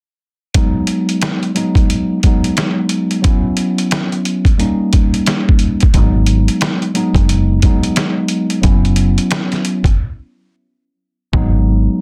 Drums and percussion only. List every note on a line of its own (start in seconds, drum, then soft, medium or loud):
0.54 kick loud
0.54 closed hi-hat medium
0.87 closed hi-hat medium
1.09 closed hi-hat medium
1.22 cross-stick medium
1.22 snare loud
1.22 closed hi-hat medium
1.43 closed hi-hat soft
1.56 closed hi-hat medium
1.75 kick loud
1.75 closed hi-hat soft
1.90 closed hi-hat medium
2.23 kick medium
2.23 closed hi-hat medium
2.44 closed hi-hat medium
2.57 cross-stick medium
2.57 snare loud
2.57 closed hi-hat medium
2.89 closed hi-hat medium
3.11 closed hi-hat soft
3.24 kick loud
3.24 closed hi-hat medium
3.57 closed hi-hat medium
3.78 closed hi-hat medium
3.91 cross-stick medium
3.91 snare loud
3.91 closed hi-hat medium
4.12 closed hi-hat soft
4.25 closed hi-hat medium
4.45 kick loud
4.45 closed hi-hat medium
4.60 closed hi-hat medium
4.93 kick medium
4.93 closed hi-hat medium
5.14 closed hi-hat medium
5.26 cross-stick medium
5.26 snare loud
5.26 closed hi-hat loud
5.49 kick medium
5.59 closed hi-hat medium
5.80 kick loud
5.80 closed hi-hat soft
5.94 kick loud
5.94 closed hi-hat medium
6.26 closed hi-hat medium
6.48 closed hi-hat medium
6.61 cross-stick loud
6.61 snare loud
6.61 closed hi-hat medium
6.82 closed hi-hat soft
6.95 closed hi-hat medium
7.15 kick loud
7.15 closed hi-hat medium
7.29 closed hi-hat medium
7.62 kick medium
7.62 closed hi-hat medium
7.83 closed hi-hat medium
7.96 cross-stick medium
7.96 snare loud
7.96 closed hi-hat loud
8.28 closed hi-hat medium
8.50 closed hi-hat soft
8.63 kick loud
8.63 closed hi-hat medium
8.85 closed hi-hat soft
8.96 closed hi-hat medium
9.18 closed hi-hat medium
9.31 cross-stick loud
9.31 snare loud
9.31 closed hi-hat medium
9.52 snare soft
9.52 closed hi-hat soft
9.65 closed hi-hat medium
9.84 kick loud
9.84 closed hi-hat soft
11.33 kick loud